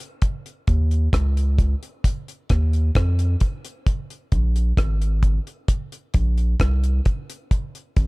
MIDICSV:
0, 0, Header, 1, 3, 480
1, 0, Start_track
1, 0, Tempo, 910470
1, 118, Time_signature, 4, 2, 24, 8
1, 4256, End_track
2, 0, Start_track
2, 0, Title_t, "Sub bass"
2, 0, Program_c, 0, 38
2, 359, Note_on_c, 0, 39, 100
2, 572, Note_off_c, 0, 39, 0
2, 597, Note_on_c, 0, 37, 79
2, 922, Note_off_c, 0, 37, 0
2, 1319, Note_on_c, 0, 39, 95
2, 1532, Note_off_c, 0, 39, 0
2, 1559, Note_on_c, 0, 41, 97
2, 1772, Note_off_c, 0, 41, 0
2, 2278, Note_on_c, 0, 34, 94
2, 2492, Note_off_c, 0, 34, 0
2, 2518, Note_on_c, 0, 32, 79
2, 2843, Note_off_c, 0, 32, 0
2, 3241, Note_on_c, 0, 34, 94
2, 3454, Note_off_c, 0, 34, 0
2, 3479, Note_on_c, 0, 36, 100
2, 3693, Note_off_c, 0, 36, 0
2, 4201, Note_on_c, 0, 32, 99
2, 4256, Note_off_c, 0, 32, 0
2, 4256, End_track
3, 0, Start_track
3, 0, Title_t, "Drums"
3, 0, Note_on_c, 9, 42, 61
3, 52, Note_off_c, 9, 42, 0
3, 114, Note_on_c, 9, 42, 75
3, 116, Note_on_c, 9, 36, 100
3, 167, Note_off_c, 9, 42, 0
3, 169, Note_off_c, 9, 36, 0
3, 242, Note_on_c, 9, 42, 51
3, 294, Note_off_c, 9, 42, 0
3, 355, Note_on_c, 9, 42, 71
3, 357, Note_on_c, 9, 36, 96
3, 408, Note_off_c, 9, 42, 0
3, 410, Note_off_c, 9, 36, 0
3, 481, Note_on_c, 9, 42, 44
3, 533, Note_off_c, 9, 42, 0
3, 596, Note_on_c, 9, 36, 106
3, 597, Note_on_c, 9, 42, 92
3, 601, Note_on_c, 9, 37, 102
3, 648, Note_off_c, 9, 36, 0
3, 650, Note_off_c, 9, 42, 0
3, 654, Note_off_c, 9, 37, 0
3, 723, Note_on_c, 9, 42, 54
3, 776, Note_off_c, 9, 42, 0
3, 836, Note_on_c, 9, 36, 94
3, 837, Note_on_c, 9, 42, 67
3, 888, Note_off_c, 9, 36, 0
3, 889, Note_off_c, 9, 42, 0
3, 963, Note_on_c, 9, 42, 52
3, 1016, Note_off_c, 9, 42, 0
3, 1077, Note_on_c, 9, 36, 106
3, 1078, Note_on_c, 9, 42, 107
3, 1130, Note_off_c, 9, 36, 0
3, 1131, Note_off_c, 9, 42, 0
3, 1204, Note_on_c, 9, 42, 50
3, 1257, Note_off_c, 9, 42, 0
3, 1315, Note_on_c, 9, 42, 75
3, 1319, Note_on_c, 9, 36, 92
3, 1322, Note_on_c, 9, 37, 63
3, 1368, Note_off_c, 9, 42, 0
3, 1371, Note_off_c, 9, 36, 0
3, 1375, Note_off_c, 9, 37, 0
3, 1441, Note_on_c, 9, 42, 46
3, 1494, Note_off_c, 9, 42, 0
3, 1556, Note_on_c, 9, 42, 74
3, 1557, Note_on_c, 9, 36, 99
3, 1563, Note_on_c, 9, 37, 101
3, 1608, Note_off_c, 9, 42, 0
3, 1610, Note_off_c, 9, 36, 0
3, 1615, Note_off_c, 9, 37, 0
3, 1681, Note_on_c, 9, 42, 54
3, 1734, Note_off_c, 9, 42, 0
3, 1794, Note_on_c, 9, 42, 69
3, 1799, Note_on_c, 9, 36, 85
3, 1847, Note_off_c, 9, 42, 0
3, 1852, Note_off_c, 9, 36, 0
3, 1922, Note_on_c, 9, 42, 63
3, 1975, Note_off_c, 9, 42, 0
3, 2038, Note_on_c, 9, 36, 107
3, 2038, Note_on_c, 9, 42, 77
3, 2091, Note_off_c, 9, 36, 0
3, 2091, Note_off_c, 9, 42, 0
3, 2164, Note_on_c, 9, 42, 52
3, 2216, Note_off_c, 9, 42, 0
3, 2277, Note_on_c, 9, 42, 67
3, 2278, Note_on_c, 9, 36, 92
3, 2329, Note_off_c, 9, 42, 0
3, 2331, Note_off_c, 9, 36, 0
3, 2403, Note_on_c, 9, 42, 46
3, 2455, Note_off_c, 9, 42, 0
3, 2517, Note_on_c, 9, 36, 117
3, 2518, Note_on_c, 9, 42, 95
3, 2522, Note_on_c, 9, 37, 98
3, 2569, Note_off_c, 9, 36, 0
3, 2571, Note_off_c, 9, 42, 0
3, 2575, Note_off_c, 9, 37, 0
3, 2644, Note_on_c, 9, 42, 58
3, 2697, Note_off_c, 9, 42, 0
3, 2756, Note_on_c, 9, 36, 95
3, 2756, Note_on_c, 9, 42, 68
3, 2808, Note_off_c, 9, 36, 0
3, 2809, Note_off_c, 9, 42, 0
3, 2884, Note_on_c, 9, 42, 51
3, 2936, Note_off_c, 9, 42, 0
3, 2996, Note_on_c, 9, 42, 108
3, 2997, Note_on_c, 9, 36, 109
3, 3049, Note_off_c, 9, 36, 0
3, 3049, Note_off_c, 9, 42, 0
3, 3122, Note_on_c, 9, 42, 55
3, 3175, Note_off_c, 9, 42, 0
3, 3235, Note_on_c, 9, 42, 78
3, 3239, Note_on_c, 9, 36, 94
3, 3288, Note_off_c, 9, 42, 0
3, 3292, Note_off_c, 9, 36, 0
3, 3361, Note_on_c, 9, 42, 44
3, 3414, Note_off_c, 9, 42, 0
3, 3478, Note_on_c, 9, 42, 79
3, 3479, Note_on_c, 9, 36, 97
3, 3485, Note_on_c, 9, 37, 105
3, 3530, Note_off_c, 9, 42, 0
3, 3531, Note_off_c, 9, 36, 0
3, 3537, Note_off_c, 9, 37, 0
3, 3604, Note_on_c, 9, 42, 54
3, 3656, Note_off_c, 9, 42, 0
3, 3719, Note_on_c, 9, 42, 72
3, 3722, Note_on_c, 9, 36, 87
3, 3772, Note_off_c, 9, 42, 0
3, 3774, Note_off_c, 9, 36, 0
3, 3846, Note_on_c, 9, 42, 64
3, 3899, Note_off_c, 9, 42, 0
3, 3960, Note_on_c, 9, 36, 103
3, 3960, Note_on_c, 9, 42, 79
3, 4012, Note_off_c, 9, 36, 0
3, 4013, Note_off_c, 9, 42, 0
3, 4086, Note_on_c, 9, 42, 50
3, 4138, Note_off_c, 9, 42, 0
3, 4199, Note_on_c, 9, 42, 76
3, 4200, Note_on_c, 9, 36, 99
3, 4251, Note_off_c, 9, 42, 0
3, 4253, Note_off_c, 9, 36, 0
3, 4256, End_track
0, 0, End_of_file